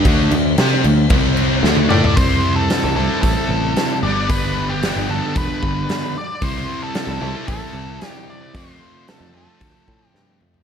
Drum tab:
CC |x-x-x-x-x-x-----|----------------|----------------|----------------|
HH |----------------|o---o---o---o---|o---o---o---o---|o---o---o---o---|
SD |----o-------o---|----o-------o---|----o-------o---|----o-------o---|
T1 |-------------o--|----------------|----------------|----------------|
T2 |--------------o-|----------------|----------------|----------------|
FT |---------------o|----------------|----------------|----------------|
BD |o-------o-------|o-------o-------|o-------o-o-----|o-------o-------|

CC |----------------|
HH |o---o---o-------|
SD |----o-------o---|
T1 |----------------|
T2 |--------------o-|
FT |---------------o|
BD |o-------o-o-----|